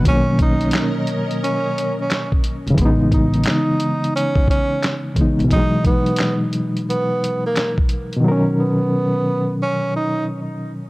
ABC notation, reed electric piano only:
X:1
M:4/4
L:1/8
Q:"Swing 16ths" 1/4=88
K:B
V:1 name="Reed electric piano" clef=bass
[B,,D,F,A,C]8 | [C,E,G,B,D]6- [C,E,G,B,D] [C,E,G,B,D] | [B,,E,F,G,D]8 | [B,,D,F,CA]8 |]